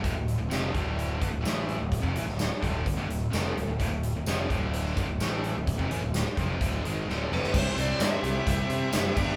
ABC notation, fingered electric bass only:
X:1
M:4/4
L:1/16
Q:1/4=128
K:Clyd
V:1 name="Fingered electric bass" clef=bass
D,,, D,,,2 D,,, =F,,,2 D,,,4 G,,, D,,, A,,,3 D,,,- | D,,, =F,,, A,,, D,,,2 z D,,,2 D,,, G,,, D,,,2 F,,,2 D,,, D,,, | D,,, D,,,2 D,,, =F,,,2 D,,,4 G,,, D,,, A,,,3 D,,,- | D,,, =F,,, A,,, D,,,2 z F,,,2 D,,,2 ^G,,,2 D,,,2 F,,, =G,,, |
C,,2 C,,2 G,,2 C,,2 C,,2 C,2 F,,,2 G,,,2 |]